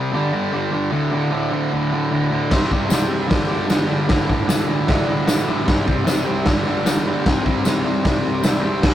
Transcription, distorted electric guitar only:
0.00 0.12 C3 loud
0.00 0.12 G3 medium
0.00 0.13 C4 loud
0.12 0.31 G2 medium
0.12 0.32 D3 loud
0.12 0.33 G3 loud
0.33 0.51 G2 medium
0.33 0.51 D3 medium
0.33 0.52 G3 medium
0.52 0.70 G2 loud
0.52 0.71 D3 loud
0.52 0.72 G3 loud
0.71 0.90 G2 medium
0.71 0.91 D3 medium
0.71 0.91 G3 medium
0.91 1.10 D2 loud
0.91 1.11 A2 loud
0.91 1.12 D3 loud
1.11 1.30 D2 medium
1.11 1.31 A2 medium
1.11 1.31 D3 loud
1.31 1.51 D2 medium
1.31 1.51 A2 medium
1.31 1.52 D3 medium
1.52 1.70 D2 medium
1.52 1.71 A2 loud
1.52 1.72 D3 loud
1.72 1.91 D2 medium
1.72 1.92 A2 medium
1.72 1.92 D3 medium
1.92 2.09 D2 medium
1.92 2.10 A2 medium
1.92 2.11 D3 medium
2.10 2.30 D2 medium
2.10 2.31 A2 loud
2.10 2.31 D3 loud
2.31 2.50 D2 medium
2.31 2.51 A2 medium
2.31 2.51 D3 medium
2.51 2.69 C3 medium
2.51 2.70 G3 loud
2.51 2.71 C4 medium
2.70 2.88 C3 medium
2.70 2.88 G3 medium
2.70 2.89 C4 medium
2.89 3.07 C3 medium
2.89 3.08 G3 medium
2.89 3.09 C4 medium
3.08 3.27 C3 loud
3.08 3.28 G3 loud
3.08 3.29 C4 loud
3.28 3.46 G2 medium
3.28 3.47 D3 medium
3.28 3.48 G3 loud
3.47 3.66 G2 medium
3.47 3.68 D3 medium
3.47 3.68 G3 medium
3.68 3.86 G2 medium
3.68 3.87 D3 loud
3.68 3.88 G3 loud
3.87 4.07 G2 medium
3.87 4.08 D3 medium
3.87 4.08 G3 medium
4.07 4.25 D2 medium
4.07 4.26 A2 loud
4.07 4.27 D3 medium
4.26 4.46 D2 medium
4.26 4.47 A2 medium
4.26 4.48 D3 loud
4.47 4.65 D2 medium
4.47 4.67 A2 medium
4.47 4.68 D3 medium
4.67 4.86 D2 loud
4.67 4.88 A2 medium
4.67 4.88 D3 loud
4.87 5.06 D2 medium
4.87 5.07 A2 medium
4.87 5.07 D3 medium
5.07 5.26 D2 medium
5.07 5.27 A2 medium
5.07 5.28 D3 medium
5.28 5.45 D2 loud
5.28 5.47 A2 medium
5.28 5.47 D3 loud
5.47 5.64 D2 medium
5.47 5.66 A2 medium
5.47 5.66 D3 medium
5.65 5.84 C3 medium
5.65 5.86 G3 loud
5.65 5.86 C4 loud
5.86 6.04 C3 medium
5.86 6.05 G3 medium
5.86 6.06 C4 loud
6.05 6.24 C3 medium
6.05 6.26 G3 medium
6.05 6.26 C4 loud
6.25 6.45 C3 loud
6.25 6.46 G3 loud
6.25 6.46 C4 loud
6.46 6.65 G2 medium
6.46 6.65 D3 loud
6.46 6.67 G3 loud
6.66 6.85 G2 medium
6.66 6.86 D3 medium
6.66 6.87 G3 loud
6.86 7.03 G2 medium
6.86 7.05 D3 loud
6.86 7.06 G3 loud
7.05 7.24 G2 medium
7.05 7.25 D3 loud
7.05 7.26 G3 medium
7.26 7.43 C3 medium
7.26 7.45 G3 loud
7.26 7.45 C4 loud
7.44 7.63 C3 medium
7.44 7.64 G3 medium
7.44 7.65 C4 medium
7.64 7.83 C3 medium
7.64 7.83 G3 loud
7.64 7.85 C4 medium
7.84 8.03 C3 loud
7.84 8.03 G3 loud
7.84 8.04 C4 loud
8.04 8.22 C3 medium
8.04 8.23 G3 medium
8.04 8.23 C4 medium
8.23 8.42 C3 medium
8.23 8.43 G3 medium
8.23 8.44 C4 medium
8.43 8.62 C3 loud
8.43 8.63 G3 loud
8.43 8.64 C4 loud
8.63 8.82 C3 medium
8.63 8.82 G3 loud
8.63 8.83 C4 medium
8.83 8.94 C3 medium
8.83 8.94 G3 loud
8.83 8.94 C4 loud

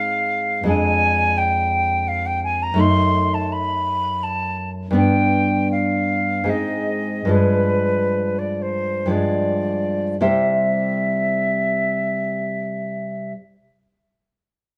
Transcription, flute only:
0.00 0.64 F5 medium
0.68 1.39 G#5 medium
1.37 2.09 G5 medium
2.08 2.27 F5 medium
2.26 2.43 G5 medium
2.43 2.64 G#5 medium
2.62 2.81 A#5 medium
2.80 3.35 C6 medium
3.34 3.54 A5 medium
3.52 4.25 B5 medium
4.23 4.71 A5 medium
4.96 5.68 G5 medium
5.71 6.51 F5 medium
6.49 7.33 D#5 medium
7.31 8.40 B4 medium
8.38 8.63 D5 soft
8.62 9.13 C5 medium
9.11 10.19 D5 medium
10.20 13.32 E5 soft

